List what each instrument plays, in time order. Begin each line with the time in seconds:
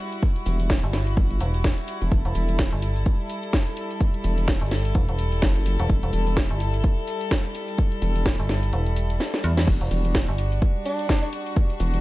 Already playing: string section G3 E4 F#4
0.13 closed hi-hat, shaker
0.22 kick, closed hi-hat, shaker
0.36 closed hi-hat, shaker
0.46 wobble bass E1, open hi-hat, shaker
0.60 closed hi-hat, shaker
0.70 kick, snare, closed hi-hat, shaker
0.83 fm bass G1, closed hi-hat, shaker
0.93 snare, open hi-hat, shaker
1.07 closed hi-hat, shaker
1.17 wobble bass G1, kick, closed hi-hat, shaker
1.31 closed hi-hat, shaker
1.41 fm bass E1, open hi-hat, shaker
1.54 closed hi-hat, shaker
1.64 kick, snare, closed hi-hat, shaker
1.78 closed hi-hat, shaker
1.88 open hi-hat, shaker
2.02 wobble bass E1, closed hi-hat, shaker
2.12 wobble bass E1, string section A4, kick, closed hi-hat, shaker
2.25 fm bass E1, closed hi-hat, shaker
2.35 wobble bass E1, open hi-hat, shaker
2.49 closed hi-hat, shaker
2.59 kick, snare, closed hi-hat, shaker
2.72 fm bass G1, shaker
2.82 open hi-hat, shaker
2.96 closed hi-hat, shaker
3.06 kick, closed hi-hat, shaker
3.20 shaker
3.30 open hi-hat, shaker
3.43 closed hi-hat, shaker
3.53 kick, snare, closed hi-hat, shaker
3.67 closed hi-hat, shaker
3.77 open hi-hat, shaker
3.91 closed hi-hat, shaker
4.01 kick, closed hi-hat, shaker
4.14 closed hi-hat, shaker
4.24 wobble bass E1, open hi-hat, shaker
4.38 closed hi-hat, shaker
4.48 kick, snare, closed hi-hat, shaker
4.61 fm bass G1, closed hi-hat, shaker
4.71 snare, open hi-hat, shaker
4.85 closed hi-hat, shaker
4.95 fm bass E1, kick, closed hi-hat, shaker
5.09 fm bass E1, closed hi-hat, shaker
5.19 open hi-hat, shaker
5.32 closed hi-hat, shaker
5.42 wobble bass F#1, kick, snare, closed hi-hat, shaker
5.56 closed hi-hat, shaker
5.66 open hi-hat, shaker
5.80 fm bass E1, closed hi-hat, shaker
5.89 wobble bass E1, kick, closed hi-hat, shaker
6.03 fm bass E1, closed hi-hat, shaker
6.13 wobble bass E1, open hi-hat, shaker
6.27 closed hi-hat, shaker
6.37 kick, snare, closed hi-hat, shaker
6.50 fm bass G1, shaker
6.60 open hi-hat, shaker
6.74 closed hi-hat, shaker
6.84 kick, closed hi-hat, shaker
6.98 shaker
7.08 open hi-hat, shaker
7.21 closed hi-hat, shaker
7.31 kick, snare, closed hi-hat, shaker
7.45 closed hi-hat, shaker
7.55 open hi-hat, shaker
7.68 closed hi-hat, shaker
7.78 kick, closed hi-hat, shaker
7.92 closed hi-hat, shaker
8.02 wobble bass E1, open hi-hat, shaker
8.16 closed hi-hat, shaker
8.26 kick, snare, closed hi-hat, shaker
8.39 fm bass G1, closed hi-hat, shaker
8.49 snare, open hi-hat, shaker
8.63 closed hi-hat, shaker
8.73 fm bass E1, closed hi-hat, shaker
8.87 closed hi-hat, shaker
8.96 open hi-hat, shaker
9.10 closed hi-hat, shaker
9.20 snare, closed hi-hat, shaker
9.34 snare, closed hi-hat, shaker
9.44 fm bass E2, open hi-hat, shaker
9.57 snare, closed hi-hat, shaker
9.67 wobble bass E1, string section D4 F#4, kick, closed hi-hat, crash, shaker
9.81 fm bass E1, closed hi-hat, shaker
9.91 wobble bass E1, open hi-hat, shaker
10.05 closed hi-hat, shaker
10.15 kick, snare, closed hi-hat, shaker
10.28 fm bass G1, shaker
10.38 open hi-hat, shaker
10.52 closed hi-hat, shaker
10.62 kick, closed hi-hat, shaker
10.76 shaker
10.86 alto saxophone D4, open hi-hat, shaker
10.99 closed hi-hat, shaker
11.09 alto saxophone D4, kick, snare, closed hi-hat, shaker
11.23 alto saxophone D4, closed hi-hat, shaker
11.33 open hi-hat, shaker
11.46 closed hi-hat, shaker
11.56 kick, closed hi-hat, shaker
11.70 closed hi-hat, shaker
11.80 wobble bass E1, open hi-hat, shaker
11.94 closed hi-hat, shaker